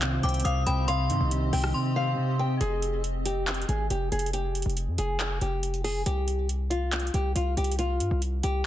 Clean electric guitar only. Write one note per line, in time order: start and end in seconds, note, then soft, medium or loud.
0.00 0.44 C3 medium
0.00 0.45 D#3 medium
0.23 1.31 C4 medium
0.45 0.87 C3 medium
0.89 1.30 C3 loud
1.10 2.18 D#3 medium
1.31 1.74 C3 medium
1.75 2.16 C3 loud
1.96 2.61 C4 medium
2.18 2.61 C3 medium